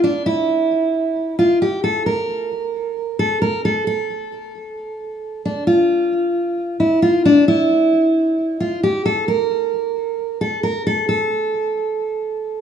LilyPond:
\new Staff \with { instrumentName = "Steel-string acoustic guitar" } { \time 4/4 \key a \phrygian \tempo 4 = 133 d'8 e'2~ e'8 f'8 g'8 | a'8 bes'2~ bes'8 a'8 bes'8 | a'8 a'2.~ a'8 | d'8 f'2~ f'8 e'8 f'8 |
d'8 e'2~ e'8 f'8 g'8 | a'8 bes'2~ bes'8 a'8 bes'8 | a'8 a'2.~ a'8 | }